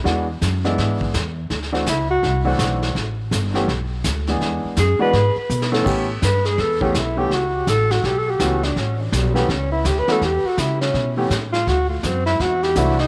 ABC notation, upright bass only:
X:1
M:4/4
L:1/8
Q:"Swing" 1/4=165
K:Amix
V:1 name="Upright bass" clef=bass
E,,2 F,,2 ^G,,2 E,,2 | D,,2 C,,2 =C,,2 B,,,2 | A,,,2 G,,,2 B,,,2 D,,2 | E,, z F,, z ^G,, z B,,2 |
A,,2 G,,2 E,,2 B,,,2 | C,,2 A,,,2 B,,,2 C,,2 | A,,,2 B,,,2 C,,2 D,, z | E,, z C,2 B,,2 A,,2 |
D,,2 F,,2 E,,2 =C,,2 |]